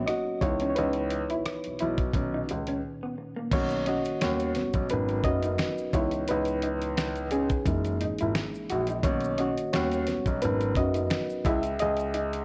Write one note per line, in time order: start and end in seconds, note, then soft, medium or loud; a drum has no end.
0.00 0.38 F#3 medium
0.00 0.38 A#3 soft
0.00 0.38 B3 soft
0.00 0.39 C#4 medium
0.00 0.09 F#4 medium
0.00 0.41 C#5 medium
0.06 0.22 D#4 medium
0.06 0.40 F#4 medium
0.06 0.39 D#5 medium
0.06 cross-stick loud
0.06 closed hi-hat medium
0.41 0.70 C#2 medium
0.41 2.10 E3 soft
0.41 2.11 B3 soft
0.41 0.77 D#4 medium
0.41 0.69 E4 medium
0.41 0.68 C#5 medium
0.41 muted clean electric guitar stroke soft
0.41 kick medium
0.41 closed hi-hat medium
0.59 0.73 C#4 medium
0.59 closed hi-hat soft
0.70 0.76 C#5 medium
0.75 1.20 C#2 loud
0.75 0.92 C#4 medium
0.75 2.80 D#4 medium
0.75 2.78 B4 medium
0.75 closed hi-hat medium
0.93 closed hi-hat soft
1.10 muted clean electric guitar stroke soft
1.10 closed hi-hat medium
1.30 1.37 B1 soft
1.30 1.42 E4 medium
1.30 closed hi-hat soft
1.45 cross-stick loud
1.45 closed hi-hat medium
1.64 1.72 B1 soft
1.64 closed hi-hat soft
1.79 2.09 B1 medium
1.79 1.95 E4 medium
1.79 closed hi-hat medium
1.98 kick medium
1.98 closed hi-hat soft
2.13 2.42 B1 medium
2.13 3.48 A#2 soft
2.13 3.48 D#3 medium
2.13 3.49 C#4 medium
2.13 kick medium
2.13 closed hi-hat medium
2.34 2.46 D#4 medium
2.49 2.78 C#2 medium
2.49 muted clean electric guitar stroke soft
2.49 closed hi-hat medium
2.67 2.80 C#4 medium
2.67 closed hi-hat soft
3.03 3.15 B3 medium
3.18 muted clean electric guitar stroke soft
3.36 3.49 A#3 medium
3.52 3.96 B1 loud
3.52 4.18 D#3 medium
3.52 4.18 A#3 medium
3.52 4.19 C#4 medium
3.52 3.85 F#4 medium
3.52 3.88 C#5 loud
3.52 kick loud
3.52 closed hi-hat medium
3.52 crash medium
3.52 maracas medium
3.69 closed hi-hat soft
3.69 maracas soft
3.86 4.01 C#4 medium
3.86 4.20 F#4 medium
3.86 4.22 D#5 medium
3.86 closed hi-hat medium
4.05 closed hi-hat soft
4.05 maracas soft
4.21 4.50 D#2 medium
4.21 4.69 G3 soft
4.21 4.69 B3 soft
4.21 4.69 C#4 medium
4.21 4.87 F#4 medium
4.21 4.92 C#5 medium
4.21 finger snap medium
4.21 snare loud
4.21 closed hi-hat medium
4.21 maracas medium
4.39 closed hi-hat soft
4.39 maracas soft
4.55 4.65 B1 soft
4.55 4.71 B3 medium
4.55 snare soft
4.55 closed hi-hat medium
4.55 maracas soft
4.73 4.87 B1 medium
4.73 kick medium
4.73 closed hi-hat soft
4.73 maracas soft
4.89 5.19 G#1 medium
4.89 5.90 F#3 medium
4.89 5.90 B3 soft
4.89 5.90 C#4 medium
4.89 5.23 D#4 medium
4.89 5.90 A#4 soft
4.89 5.26 B4 medium
4.89 muted clean electric guitar stroke soft
4.89 closed hi-hat medium
4.89 maracas medium
5.08 closed hi-hat soft
5.08 maracas soft
5.24 5.53 F#1 medium
5.24 5.40 C#4 medium
5.24 5.90 F#4 medium
5.24 5.95 D#5 loud
5.24 kick medium
5.24 closed hi-hat medium
5.43 5.56 D#4 medium
5.43 closed hi-hat soft
5.43 maracas soft
5.58 finger snap medium
5.58 snare loud
5.58 closed hi-hat medium
5.58 maracas medium
5.78 maracas soft
5.93 6.22 C#2 medium
5.93 7.62 E3 medium
5.93 7.62 B3 soft
5.93 6.29 D#4 medium
5.93 6.09 E4 medium
5.93 6.27 E4 medium
5.93 6.29 C#5 medium
5.93 kick loud
5.93 closed hi-hat medium
5.93 maracas medium
6.11 closed hi-hat soft
6.11 maracas soft
6.28 7.48 C#2 medium
6.28 7.29 D#4 medium
6.28 7.28 B4 medium
6.28 closed hi-hat medium
6.28 maracas medium
6.45 closed hi-hat soft
6.45 maracas soft
6.62 6.78 D#4 medium
6.62 closed hi-hat medium
6.82 closed hi-hat soft
6.82 maracas soft
6.97 finger snap medium
6.97 snare loud
6.97 closed hi-hat medium
6.97 maracas medium
7.16 closed hi-hat soft
7.16 maracas soft
7.31 7.46 C#4 medium
7.31 8.66 C#4 medium
7.31 8.65 G#4 medium
7.31 closed hi-hat medium
7.31 maracas soft
7.50 kick medium
7.50 closed hi-hat soft
7.50 maracas soft
7.66 7.94 F#1 medium
7.66 9.00 E3 medium
7.66 9.00 G#3 medium
7.66 9.01 A#3 soft
7.66 9.01 D#4 medium
7.66 muted clean electric guitar stroke soft
7.66 kick medium
7.66 closed hi-hat medium
7.66 maracas medium
7.84 closed hi-hat soft
7.84 maracas soft
8.01 8.10 G#1 soft
8.01 8.16 D#4 medium
8.01 closed hi-hat medium
8.18 8.33 G#1 medium
8.18 8.32 E4 medium
8.18 closed hi-hat soft
8.18 maracas soft
8.35 finger snap medium
8.35 muted clean electric guitar stroke soft
8.35 snare loud
8.35 closed hi-hat medium
8.35 maracas medium
8.55 maracas soft
8.70 8.98 A#1 medium
8.70 8.85 F#4 medium
8.70 closed hi-hat medium
8.70 maracas medium
8.87 9.01 D#4 medium
8.87 closed hi-hat soft
8.87 maracas soft
9.04 9.47 B1 loud
9.04 9.51 D#3 medium
9.04 9.52 A#3 medium
9.04 9.52 C#4 medium
9.04 9.37 F#4 medium
9.04 9.39 C#5 medium
9.04 kick loud
9.04 closed hi-hat medium
9.04 maracas medium
9.21 closed hi-hat soft
9.21 maracas soft
9.38 9.54 C#4 medium
9.38 9.71 F#4 medium
9.38 9.74 D#5 medium
9.38 closed hi-hat medium
9.58 closed hi-hat soft
9.58 maracas soft
9.73 10.02 D#2 medium
9.73 10.20 G3 medium
9.73 10.21 B3 soft
9.73 10.21 C#4 medium
9.73 10.39 F#4 medium
9.73 10.44 C#5 medium
9.73 finger snap medium
9.73 snare loud
9.73 closed hi-hat medium
9.73 maracas medium
9.92 closed hi-hat soft
9.92 maracas soft
10.07 10.17 B1 soft
10.07 10.22 B3 medium
10.07 snare soft
10.07 closed hi-hat medium
10.07 maracas soft
10.26 10.39 B1 medium
10.26 kick medium
10.26 closed hi-hat soft
10.26 maracas soft
10.42 10.71 G#1 medium
10.42 11.41 F#3 medium
10.42 11.42 B3 soft
10.42 11.42 C#4 medium
10.42 10.75 D#4 medium
10.42 11.41 A#4 soft
10.42 10.77 B4 medium
10.42 muted clean electric guitar stroke soft
10.42 closed hi-hat medium
10.42 maracas medium
10.61 closed hi-hat soft
10.61 maracas soft
10.76 11.04 F#1 medium
10.76 10.91 C#4 medium
10.76 11.42 F#4 medium
10.76 11.48 D#5 loud
10.76 kick medium
10.76 closed hi-hat medium
10.94 11.07 D#4 medium
10.94 closed hi-hat soft
10.94 maracas soft
11.11 finger snap medium
11.11 snare loud
11.11 closed hi-hat medium
11.11 maracas medium
11.30 maracas soft
11.45 11.74 C#2 medium
11.45 11.60 E4 medium
11.45 11.78 G#4 medium
11.45 11.77 E5 medium
11.45 kick loud
11.45 closed hi-hat medium
11.45 maracas medium
11.63 closed hi-hat soft
11.63 maracas soft
11.79 12.45 C#2 loud
11.79 12.45 G#4 medium
11.79 12.45 D#5 loud
11.79 closed hi-hat medium
11.79 maracas medium
11.97 closed hi-hat soft
11.97 maracas soft
12.14 12.29 D#4 medium
12.14 closed hi-hat medium
12.33 closed hi-hat soft
12.33 maracas soft